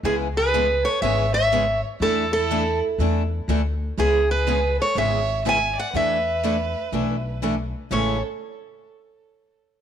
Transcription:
X:1
M:4/4
L:1/8
Q:"Swing" 1/4=122
K:A
V:1 name="Steel-string acoustic guitar"
G B2 c e e2 z | A A2 z4 z | G B2 c e2 g f | e6 z2 |
c z6 z |]
V:2 name="Violin"
E G2 A c c2 z | E E2 z4 z | E G2 A c2 e d | B6 z2 |
A z6 z |]
V:3 name="Steel-string acoustic guitar"
[C,G,B,EG] z [C,G,B,EG] z [C,G,B,EG] z [C,G,B,EG] z | [E,A,DEA] z [E,A,DEA] z [E,A,DEA] z [E,A,DEA] z | [C,G,B,EG] z [C,G,B,EG] z [C,G,B,EG] z [C,G,B,EG] z | [E,A,DEA] z [E,A,DEA] z [E,A,DEA] z [E,A,DEA] z |
[A,,E,G,CEA] z6 z |]
V:4 name="Steel-string acoustic guitar"
[C,E,B,CG] z [C,E,B,CG] z [C,E,B,CG] z [C,E,B,CG] z | [E,A,DEA] z [E,A,DEA] z [E,A,DEA] z [E,A,DEA] z | [C,E,B,CG] z [C,E,B,CG] z [C,E,B,CG] z [C,E,B,CG] z | [E,A,DEA] z [E,A,DEA] z [E,A,DEA] z [E,A,DEA] z |
[A,,C,E,A,CG] z6 z |]
V:5 name="Upright bass" clef=bass
C,,4 G,,,4 | E,,4 E,,2 D,,2 | C,,4 G,,,4 | E,,4 B,,,4 |
A,,, z6 z |]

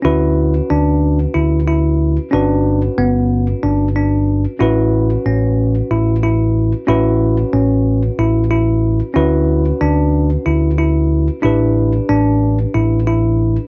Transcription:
X:1
M:7/8
L:1/8
Q:1/4=92
K:Amix
V:1 name="Tine electric piano"
[CFB]6- [CFB] | [CFB]6- [CFB] | [CFB]6- [CFB] | [CFB]6- [CFB] |
[CFB]6- [CFB] | [DGB]6- [DGB] |]
V:2 name="Tine electric piano"
E2 D2 E E2 | D2 B,2 D D2 | E2 C2 E E2 | E2 C2 E E2 |
E2 D2 E E2 | E2 D2 E E2 |]
V:3 name="Fingered electric bass" clef=bass
D,,2 D,,2 D,,3 | G,,,2 G,,,2 G,,,3 | A,,,2 A,,,2 A,,,3 | A,,,2 A,,,2 A,,,3 |
D,,2 D,,2 D,,3 | A,,,2 A,,,2 A,,,3 |]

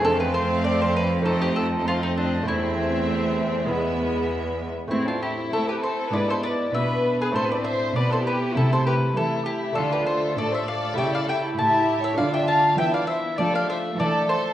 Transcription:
X:1
M:4/4
L:1/16
Q:1/4=99
K:Am
V:1 name="Mandolin"
A B c2 d c B2 A G A2 F _E D2 | E12 z4 | E F G2 A B c2 d c d2 e3 B | c d e2 d c B2 A c B2 A2 G2 |
A B c2 d e f2 g f g2 a3 e | f g a2 g f e2 d f e2 d2 c2 |]
V:2 name="Violin section"
C8 C4 C4 | C8 B,6 z2 | C D E2 E G A2 B A B2 B3 ^G | A B c2 B A G2 E A G2 E2 E2 |
F G A2 A c d2 e d e2 e3 ^c | d e f2 e d c2 A d c2 A2 A2 |]
V:3 name="Violin section"
f8 _e4 e4 | e8 e6 z2 | E8 E4 D4- | D4 E8 E4 |
F4 A8 G4 | F4 E4 D4 A4 |]
V:4 name="Viola section"
A,8 A,4 A,4 | A,8 ^G,6 z2 | C4 C4 B,4 B,4 | C4 B,4 A,4 A,4- |
A,8 E8 | D4 B,4 A,4 A,4 |]
V:5 name="Lute"
[A,C]8 [A,C_E]8 | [A,CE]8 [^G,B,E]8 | [A,CE]8 [B,DE]8 | [A,CE]16 |
[A,DF]8 [A,EG]8 | [A,DF]16 |]
V:6 name="Lute" clef=bass
F,,16 | E,,12- E,,2 z2 | A,,4 A,4 ^G,,4 B,,4 | A,,4 B,,4 C,4 E,4 |
D,4 A,,4 ^C,4 A,,4 | D,4 E,4 F,4 E,4 |]
V:7 name="Cello section" clef=bass
F,,16 | E,,12- E,,2 z2 | A,,4 A,4 ^G,,4 B,,4 | A,,4 B,,4 C,4 E,4 |
D,4 A,,4 ^C,4 A,,4 | D,4 E,4 F,4 E,4 |]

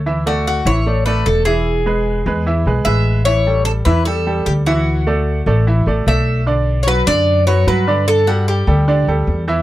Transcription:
X:1
M:4/4
L:1/16
Q:1/4=150
K:D
V:1 name="Cuban tres"
z2 F2 F2 c4 B2 A2 ^G2- | ^G8- G2 z2 e4 | c4 A2 B2 A4 G2 F2- | F12 e4 |
z3 z/2 c/2 B2 d4 c2 B4 | A2 F2 G8- G2 z2 |]
V:2 name="Grand piano"
[E,Ee]2 [A,Ad]4 [E,Ee]2 [A,Ad]2 [A,Ad]4 [E,Ee]2- | [E,Ee]2 [^G,^GB]4 [G,GB]2 [E,Ee]2 [G,GB]2 [G,GB]4 | [E,Ee]2 [G,GA]4 [E,Ee]2 [G,GA]2 [G,GA]4 [E,Ee]2- | [E,Ee]2 [A,Ad]4 [A,Ad]2 [E,Ee]2 [A,Ad]2 [A,Ad]4 |
[D,Dd]4 [F,FB]2 [D,Dd]4 [F,FB]2 [F,FB]2 [D,Dd]2- | [D,Dd]2 [G,GA]4 [G,GA]2 [D,Dd]2 [G,GA]4 [E,Ee]2 |]
V:3 name="Upright bass" clef=bass
D,,6 A,,,6 E,,,4- | E,,,6 E,,4 B,,,2 A,,,4- | A,,,6 E,,6 D,,4- | D,,6 A,,,4 A,,,2 B,,,4- |
B,,,6 F,,6 G,,4- | G,,6 D,,4 D,,2 E,,4 |]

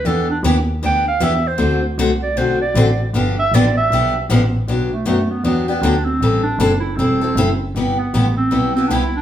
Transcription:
X:1
M:4/4
L:1/16
Q:"Swing" 1/4=156
K:Gmix
V:1 name="Clarinet"
A2 D2 z4 g2 f2 e2 c2- | c2 z4 d2 c2 d6 | z2 e2 d2 e6 z4 | [K:G] z2 A,2 A,2 B,2 B,2 B,2 D2 C2- |
C2 D4 E2 C6 z2 | z2 B,4 C4 C3/2 D/2 E2 D2 |]
V:2 name="Steel-string acoustic guitar"
[E,B,DG]2 z2 [E,B,DG] z3 [E,B,DG]2 z2 [E,B,DG] z3 | [D,A,C^FA]2 z2 [D,A,CFA] z3 [D,A,CFA]2 z2 [D,A,CFA] z3 | [D,F,B,DG]2 z2 [D,F,B,DG] z3 [D,F,B,DG]2 z2 [D,F,B,DG] z3 | [K:G] [D,F,B,DG]2 z2 [D,F,B,DG] z3 [D,F,B,DG]2 [B,DG]2 [D,F,B,DG] z3 |
[E,G,CEA]2 z2 [E,G,CEA] z3 [E,G,CEA]2 [CEA]2 [E,G,CEA] z3 | [C,G,B,EG]2 z2 [C,G,B,EG] z3 [C,G,B,EG]2 [B,EG]2 [C,G,B,EG] z3 |]
V:3 name="Double bass" clef=bass
E,,4 _E,,4 D,,4 =E,,4 | D,,4 C,,4 B,,,4 A,,,4 | G,,,4 A,,,4 B,,,4 A,,,2 A,,,2 | [K:G] B,,,4 F,,4 E,,4 D,,4 |
A,,,4 F,,,4 E,,,4 F,,,4 | G,,,4 A,,,4 B,,,4 C,,4 |]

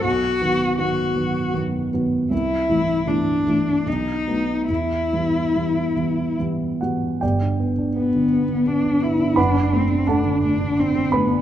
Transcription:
X:1
M:3/4
L:1/16
Q:1/4=79
K:Em
V:1 name="Cello"
F4 F4 z4 | E4 D4 ^D4 | E8 z4 | [K:G] z4 B,4 D2 E2 |
D2 C2 D2 D2 C2 B,2 |]
V:2 name="Grand piano"
z12 | z12 | z8 z2 [Ff]2 | [K:G] [Gdg]12 |
[Bfb]4 [Afa]4 z2 [Bb]2 |]
V:3 name="Grand piano" clef=bass
B,,,2 [^D,F,B,]2 [D,F,B,]2 [D,F,B,]2 [D,F,B,]2 [D,F,B,]2 | C,,2 [E,A,E]2 [E,A,E]2 [E,A,E]2 B,,,2 [F,A,B,]2 | E,,2 [E,G,B,]2 [E,G,B,]2 [E,G,B,]2 [E,G,B,]2 [E,G,B,]2 | [K:G] G,,, D B, D B, D, B, D, B, D, B, D |
F,,, D A, D A, D, A, D, D D, A, D |]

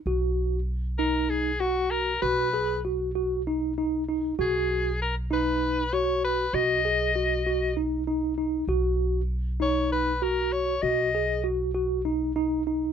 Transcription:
X:1
M:7/8
L:1/8
Q:1/4=97
K:B
V:1 name="Soprano saxophone"
z3 A G F A | B2 z4 z | G2 A B2 c B | d4 z3 |
z3 c B A c | d2 z4 z |]
V:2 name="Tine electric piano"
F2 z D2 F2 | F G F F D D D | F2 z D2 F2 | F G F F D D D |
F2 z D2 F2 | F G F F D D D |]
V:3 name="Upright bass" clef=bass
B,,,6- B,,, | B,,,6- B,,, | B,,,6- B,,, | B,,,6- B,,, |
B,,,6- B,,, | B,,,6- B,,, |]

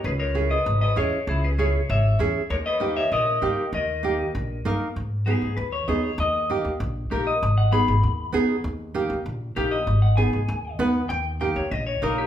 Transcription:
X:1
M:4/4
L:1/8
Q:1/4=195
K:G#m
V:1 name="Clean electric guitar"
[GB] [Ac]2 [Bd]2 [Bd] [Gc]2 | [EG] [GB] [Gc]2 [ce]2 z2 | [Ac] [Bd]2 [ce] [Ad]4 | [Ad]6 z2 |
z2 G2 B c d c | d2 z4 =G d- | d f b4 z2 | z6 =G d- |
d f g4 z2 | =g z g c d c D =G |]
V:2 name="Nylon-string guitar"
z2 [CEG] z3 [CEG] z | z2 [CEG] z3 [CEG] z | z2 [A,D=G] z3 [A,DG] z | z2 [A,D=G] z3 [A,DA] z |
z2 [B,DG] z3 [B,DG] z | z2 [A,D=G] z3 [A,DA] z | z2 [B,DG] z3 [B,DG] z | z2 [A,D=G] z3 [A,DG] z |
z2 [B,DG] z3 [B,DB] z | z2 [A,D=G] z3 [A,DA] z |]
V:3 name="Upright bass" clef=bass
C,,4 G,,,2 E,, z | C,,4 G,,,2 E,, z | D,,4 A,,,2 =G,, z | D,,4 A,,,2 =G,, z |
G,,3 G,, D,,2 D,,2 | D,,3 D,, A,,,2 A,,,2 | G,,,3 G,,, D,,2 D,,2 | D,,3 D,, A,,,2 A,,,2 |
G,,,3 G,,, D,,2 D,,2 | D,,3 D,, A,,,2 A,,,2 |]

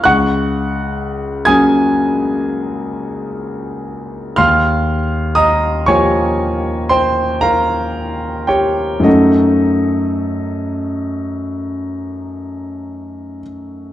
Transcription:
X:1
M:9/8
L:1/8
Q:3/8=39
K:Gblyd
V:1 name="Grand piano"
[gd'g']3 [ae'a']6 | [fc'f']2 [ebe'] [dad']2 [c=gc'] [Bfb]2 [=Gdg] | [E=Ae]8 z |]
V:2 name="Grand piano"
D,,3 [G,B,DA]6 | E,,3 [F,B,F=G]6 | [G,,G,=A,DG]8- [G,,G,A,DG] |]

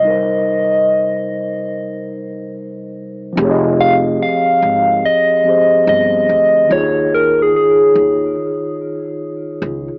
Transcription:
X:1
M:4/4
L:1/16
Q:"Swing 16ths" 1/4=72
K:Fm
V:1 name="Soft synth lead"
e12 z4 | z2 f2 f4 e4 e4 | d2 B A A6 z6 |]
V:2 name="Tine electric piano"
[C,G,EBc]16 | [F,CGAde]8- [F,CGAde]2 [F,CGAc]6 | [E,EFAd]16 |]
V:3 name="Upright bass" clef=bass
z16 | F,,,4 z2 A,,,2 z4 G,,,2 =D,,2 | E,,4 z2 E,,2 z6 D,, z |]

